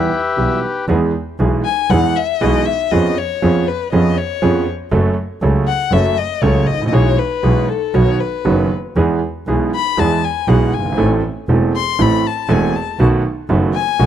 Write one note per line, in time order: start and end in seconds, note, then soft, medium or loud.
0.00 0.21 E4 medium
0.00 0.86 G4 medium
0.00 0.85 B4 medium
0.00 0.60 E5 medium
0.37 0.59 B1 medium
0.37 0.59 B1 soft
0.37 0.59 B2 soft
0.37 0.59 E3 soft
0.37 0.59 G3 soft
0.37 0.59 B3 soft
0.37 0.59 G4 soft
0.88 1.10 E2 medium
0.88 1.10 E3 medium
0.88 1.10 G#3 medium
0.88 1.10 B3 medium
0.88 1.10 G#4 medium
1.39 1.61 B1 medium
1.39 1.61 B2 medium
1.39 1.61 E3 medium
1.39 1.61 G#3 medium
1.39 1.61 B3 medium
1.39 1.61 G#4 medium
1.65 1.92 G#5 medium
1.90 2.12 E2 loud
1.90 2.12 E2 medium
1.90 2.12 E3 medium
1.90 2.12 G#3 medium
1.90 2.12 B3 medium
1.90 2.12 G#4 medium
1.90 2.18 F#5 medium
2.16 2.43 E5 medium
2.41 2.63 B1 medium
2.41 2.63 B2 medium
2.41 2.62 E3 medium
2.41 2.63 G#3 medium
2.41 2.63 B3 medium
2.41 2.63 G#4 medium
2.41 2.67 D#5 medium
2.66 2.92 E5 medium
2.91 3.13 F2 medium
2.91 3.13 F3 medium
2.91 3.13 B3 medium
2.91 3.13 C#4 medium
2.91 3.13 G#4 medium
2.91 3.19 D#5 medium
3.18 3.69 C#5 medium
3.42 3.63 F2 medium
3.42 3.63 F3 medium
3.42 3.63 B3 medium
3.42 3.63 C#4 medium
3.42 3.64 G#4 medium
3.67 3.92 B4 medium
3.92 4.14 F2 medium
3.92 4.14 F3 medium
3.92 4.13 B3 medium
3.92 4.14 C#4 medium
3.92 4.14 G#4 medium
3.92 4.19 D#5 medium
4.17 4.67 C#5 medium
4.42 4.63 F2 medium
4.42 4.63 F3 medium
4.42 4.63 B3 medium
4.42 4.63 C#4 medium
4.42 4.63 G#4 medium
4.91 5.13 F#1 medium
4.91 5.13 F#2 medium
4.91 5.13 F#3 medium
4.91 5.13 A3 medium
4.91 5.13 C#4 medium
4.91 5.13 A4 medium
5.42 5.63 C#2 medium
5.42 5.64 C#2 medium
5.42 5.64 C#3 medium
5.42 5.63 F#3 medium
5.42 5.63 A3 medium
5.42 5.64 C#4 medium
5.42 5.64 A4 medium
5.68 5.94 F#5 medium
5.91 6.13 F#1 loud
5.91 6.14 F#2 medium
5.91 6.14 F#3 medium
5.91 6.14 A3 medium
5.91 6.14 C#4 medium
5.91 6.14 A4 medium
5.91 6.19 E5 medium
6.17 6.44 D#5 medium
6.42 6.63 C#2 medium
6.42 6.64 C#2 medium
6.42 6.64 C#3 medium
6.42 6.64 F#3 medium
6.42 6.63 A3 medium
6.42 6.64 C#4 medium
6.42 6.64 A4 medium
6.42 6.68 C#5 medium
6.67 6.92 A1 soft
6.67 6.86 D#5 medium
6.73 6.80 G#1 soft
6.81 6.87 A1 medium
6.86 6.93 A#1 medium
6.86 6.95 D#5 medium
6.92 7.14 B1 medium
6.92 7.14 B2 medium
6.92 7.14 E3 medium
6.92 7.14 G#3 medium
6.92 7.14 B3 medium
6.92 7.15 G#4 medium
6.92 7.20 C#5 medium
7.18 7.70 B4 medium
7.43 7.65 B1 medium
7.43 7.65 B2 medium
7.43 7.65 E3 medium
7.43 7.65 G#3 medium
7.43 7.65 B3 medium
7.43 7.65 G#4 medium
7.68 7.96 A4 medium
7.94 8.16 B1 medium
7.94 8.16 B2 medium
7.94 8.16 D#3 medium
7.94 8.16 F#3 medium
7.94 8.16 B3 medium
7.94 8.16 F#4 medium
7.94 8.21 C#5 medium
8.20 8.71 B4 medium
8.45 8.67 F#1 medium
8.45 8.67 F#2 medium
8.45 8.67 D#3 medium
8.45 8.67 F#3 medium
8.45 8.67 B3 medium
8.45 8.67 F#4 medium
8.96 9.18 E2 medium
8.96 9.18 E3 medium
8.96 9.18 G#3 medium
8.96 9.18 B3 medium
8.96 9.18 G#4 medium
9.47 9.68 B1 medium
9.47 9.69 B1 medium
9.47 9.69 B2 medium
9.47 9.69 E3 medium
9.47 9.69 G#3 medium
9.47 9.69 B3 medium
9.47 9.69 G#4 medium
9.75 10.01 B5 medium
9.97 10.19 E2 medium
9.97 10.19 E3 medium
9.97 10.19 G#3 medium
9.97 10.19 B3 medium
9.97 10.19 G#4 medium
9.97 10.26 A5 medium
10.24 10.50 G#5 medium
10.48 10.69 B1 medium
10.48 10.69 B2 medium
10.48 10.69 E3 medium
10.48 10.69 G#3 medium
10.48 10.69 B3 medium
10.48 10.70 G#4 medium
10.48 10.75 F#5 medium
10.73 10.98 G1 medium
10.73 10.99 G#5 medium
10.79 10.86 F#1 soft
10.85 10.92 G1 medium
10.92 10.99 G#1 medium
10.97 11.20 A1 medium
10.97 11.20 A2 medium
10.97 11.19 E3 medium
10.97 11.20 A3 medium
10.97 11.20 C4 medium
10.97 11.20 A4 medium
11.49 11.71 E1 medium
11.49 11.71 E2 medium
11.49 11.70 E3 medium
11.49 11.71 A3 medium
11.49 11.71 C4 medium
11.49 11.71 A4 medium
11.76 12.03 C6 loud
11.99 12.21 A1 medium
11.99 12.21 A2 medium
11.99 12.21 E3 medium
11.99 12.21 A3 medium
11.99 12.21 C4 medium
11.99 12.21 A4 medium
11.99 12.28 B5 medium
12.27 12.53 A5 medium
12.48 12.70 E1 medium
12.48 12.71 E1 medium
12.48 12.70 E2 medium
12.48 12.70 E3 medium
12.48 12.70 A3 medium
12.48 12.71 C4 medium
12.48 12.71 A4 medium
12.48 12.77 G#5 medium
12.76 13.00 A5 medium
12.99 13.20 B1 medium
12.99 13.21 B1 medium
12.99 13.21 B2 medium
12.99 13.21 D#3 medium
12.99 13.21 A3 medium
12.99 13.21 B3 medium
12.99 13.21 F#4 medium
13.49 13.71 F#1 medium
13.49 13.71 F#2 medium
13.49 13.71 D#3 medium
13.49 13.71 A3 medium
13.49 13.71 B3 medium
13.49 13.71 F#4 medium
13.74 14.06 G#5 loud
13.99 14.06 B1 medium
13.99 14.06 B1 loud
13.99 14.06 B2 medium
13.99 14.06 D#3 medium
13.99 14.06 A3 medium
13.99 14.06 B3 medium
13.99 14.06 F#4 medium